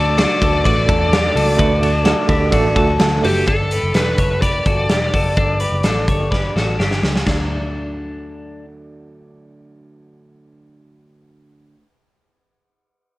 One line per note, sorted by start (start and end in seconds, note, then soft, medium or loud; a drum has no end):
0.00 0.25 D2 loud
0.00 0.42 D3 medium
0.00 0.16 A3 medium
0.00 0.16 D4 medium
0.00 0.17 F#4 medium
0.00 0.18 A4 loud
0.00 0.19 A4 medium
0.00 0.17 D5 loud
0.00 0.16 D6 medium
0.07 0.42 A3 soft
0.07 0.43 D4 medium
0.07 0.42 F#4 medium
0.16 0.33 A3 medium
0.16 0.33 D4 medium
0.16 0.42 D4 medium
0.16 0.34 F#4 medium
0.16 0.42 F#4 medium
0.16 0.34 A4 medium
0.16 0.65 D5 loud
0.16 0.61 D6 medium
0.16 snare loud
0.16 ride medium
0.40 0.62 D2 loud
0.40 0.88 D3 medium
0.40 0.57 A3 medium
0.40 0.88 A3 medium
0.40 0.57 D4 medium
0.40 0.57 F#4 medium
0.40 0.64 F#4 medium
0.40 0.58 A4 medium
0.40 0.64 A4 medium
0.40 kick loud
0.40 ride medium
0.44 0.90 D4 medium
0.44 0.90 F#4 medium
0.63 0.85 A1 loud
0.63 0.80 A3 loud
0.63 0.80 D4 medium
0.63 0.81 F#4 medium
0.63 0.88 F#4 medium
0.63 0.81 A4 loud
0.63 0.88 B4 medium
0.63 2.97 D5 medium
0.63 2.96 D6 medium
0.63 kick medium
0.63 ride medium
0.87 1.29 E2 loud
0.87 1.24 D3 medium
0.87 1.04 A3 medium
0.87 1.24 A3 medium
0.87 1.04 D4 medium
0.87 1.24 D4 medium
0.87 1.04 F#4 medium
0.87 1.11 F#4 medium
0.87 1.05 A4 medium
0.87 1.12 A4 medium
0.87 kick loud
0.87 ride medium
0.91 1.23 F#4 medium
1.12 1.28 A3 medium
1.12 1.28 D4 medium
1.12 1.36 D4 medium
1.12 1.28 F#4 medium
1.12 1.36 G4 medium
1.12 1.29 A4 medium
1.12 snare loud
1.12 ride medium
1.24 1.59 A3 medium
1.24 1.59 D4 medium
1.24 1.59 F#4 medium
1.34 1.56 C#2 loud
1.34 1.51 A3 medium
1.34 1.51 D4 medium
1.34 1.52 F#4 medium
1.34 1.59 F#4 medium
1.34 1.58 A4 medium
1.34 1.52 A4 loud
1.34 open hi-hat medium
1.34 ride medium
1.57 1.79 D2 loud
1.57 1.94 D3 medium
1.57 1.74 A3 loud
1.57 1.95 A3 medium
1.57 1.74 D4 loud
1.57 1.95 D4 medium
1.57 1.75 F#4 loud
1.57 1.83 F#4 medium
1.57 1.75 A4 loud
1.57 1.82 B4 loud
1.57 kick loud
1.57 ride medium
1.62 1.93 F#4 medium
1.81 2.13 D2 loud
1.81 1.98 A3 medium
1.81 1.98 D4 medium
1.81 1.98 F#4 medium
1.81 2.05 F#4 medium
1.81 1.98 A4 medium
1.81 2.04 A4 medium
1.81 ride medium
1.95 2.29 A3 medium
1.95 2.30 D4 medium
1.95 2.30 F#4 medium
2.04 2.21 A3 medium
2.04 2.22 D4 medium
2.04 2.22 F#4 medium
2.04 2.29 F#4 medium
2.04 2.29 A4 medium
2.04 2.22 A4 loud
2.04 snare loud
2.04 ride medium
2.27 2.49 D2 medium
2.27 2.75 D3 medium
2.27 2.45 A3 medium
2.27 2.76 A3 medium
2.27 2.45 D4 medium
2.27 2.77 D4 medium
2.27 2.53 E4 medium
2.27 2.45 F#4 medium
2.27 2.53 G4 medium
2.27 2.46 A4 loud
2.27 kick loud
2.27 ride medium
2.32 2.77 F#4 medium
2.51 2.73 A1 loud
2.51 2.68 A3 loud
2.51 2.68 D4 loud
2.51 2.77 D4 medium
2.51 2.69 F#4 loud
2.51 2.77 F#4 medium
2.51 2.69 A4 loud
2.51 kick medium
2.51 ride medium
2.75 2.96 D2 medium
2.75 3.12 D3 medium
2.75 2.92 A3 loud
2.75 3.12 A3 medium
2.75 2.92 D4 medium
2.75 3.12 D4 medium
2.75 2.92 F#4 medium
2.75 3.22 F#4 medium
2.75 3.11 F#4 medium
2.75 2.93 A4 loud
2.75 3.21 A4 medium
2.75 kick loud
2.75 ride medium
3.00 3.20 D2 medium
3.00 3.16 A3 medium
3.00 3.16 D4 medium
3.00 3.16 F#4 medium
3.00 3.17 A4 loud
3.00 snare loud
3.00 ride medium
3.12 3.48 A3 medium
3.12 3.48 D4 medium
3.12 3.48 F#4 medium
3.22 3.44 F#1 medium
3.22 3.39 A3 medium
3.22 3.39 D4 medium
3.22 3.40 F#4 medium
3.22 3.48 F#4 medium
3.22 3.47 G4 medium
3.22 3.47 A4 medium
3.22 3.40 B4 loud
3.22 open hi-hat medium
3.22 ride medium
3.47 3.77 G1 loud
3.47 3.83 G3 medium
3.47 3.84 B3 medium
3.47 3.72 D4 medium
3.47 3.83 D4 medium
3.47 3.83 G4 medium
3.47 3.96 A4 medium
3.47 3.71 A4 medium
3.47 kick medium
3.47 closed hi-hat medium
3.71 3.95 G4 medium
3.71 3.95 B4 medium
3.71 closed hi-hat medium
3.83 3.93 F#1 medium
3.83 4.32 G3 soft
3.83 4.31 B3 soft
3.83 4.32 D4 soft
3.83 4.30 G4 soft
3.94 4.15 E1 medium
3.94 4.19 D4 medium
3.94 4.19 A4 medium
3.94 4.42 B4 medium
3.94 snare medium
3.94 closed hi-hat medium
4.18 4.59 F#1 medium
4.18 4.43 A4 medium
4.18 4.42 C#5 medium
4.18 kick medium
4.18 closed hi-hat medium
4.31 4.65 G3 soft
4.31 4.66 B3 soft
4.31 4.67 D4 soft
4.31 4.66 G4 soft
4.42 4.66 G4 medium
4.42 4.66 B4 medium
4.42 6.75 D5 medium
4.42 kick medium
4.42 closed hi-hat medium
4.66 4.86 G1 medium
4.66 5.01 G3 medium
4.66 5.02 B3 medium
4.66 5.01 D4 medium
4.66 4.89 F#4 medium
4.66 5.00 G4 medium
4.66 4.90 A4 medium
4.66 kick medium
4.66 closed hi-hat medium
4.89 5.10 E1 medium
4.89 5.14 D4 medium
4.89 5.13 G4 medium
4.89 snare medium
4.89 closed hi-hat medium
5.01 5.35 G3 soft
5.01 5.37 B3 soft
5.01 5.37 D4 medium
5.01 5.37 G4 medium
5.13 5.33 F#1 medium
5.13 5.37 F#4 medium
5.13 5.36 A4 medium
5.13 kick medium
5.13 open hi-hat medium
5.36 5.67 G1 medium
5.36 5.72 G3 medium
5.36 5.73 B3 medium
5.36 5.61 D4 medium
5.36 5.73 D4 medium
5.36 5.72 G4 medium
5.36 5.60 A4 loud
5.36 kick loud
5.36 closed hi-hat medium
5.60 5.84 G4 soft
5.60 5.84 B4 medium
5.60 closed hi-hat medium
5.72 5.82 F#1 medium
5.72 6.21 G3 soft
5.72 6.21 B3 soft
5.72 6.21 D4 medium
5.72 6.19 G4 medium
5.83 6.10 A1 medium
5.83 6.08 D4 medium
5.83 6.08 A4 medium
5.83 snare medium
5.83 closed hi-hat medium
6.08 6.48 G1 medium
6.08 6.32 A4 medium
6.08 6.31 C#5 medium
6.08 kick medium
6.08 closed hi-hat medium
6.20 6.54 G3 soft
6.20 6.56 B3 soft
6.20 6.56 D4 soft
6.20 6.55 G4 medium
6.31 6.55 G4 medium
6.31 6.55 B4 medium
6.31 kick medium
6.31 snare soft
6.55 6.76 A1 medium
6.55 6.91 G3 medium
6.55 6.92 B3 medium
6.55 6.91 D4 medium
6.55 6.78 F#4 soft
6.55 6.89 G4 medium
6.55 6.79 A4 medium
6.55 snare medium
6.79 6.99 G1 medium
6.79 7.24 D4 soft
6.79 7.23 G4 medium
6.79 snare medium
6.91 7.28 G3 soft
6.91 7.27 B3 soft
6.91 7.27 D4 soft
6.91 7.26 G4 medium
6.91 snare medium
7.03 7.23 C#2 medium
7.03 snare medium
7.16 snare medium
7.24 11.73 D2 medium
7.24 11.75 D3 medium
7.24 11.79 F#3 medium
7.24 8.65 D4 medium
7.24 kick medium
7.24 snare medium
7.24 splash medium
7.31 11.82 A3 medium
7.31 11.86 D4 medium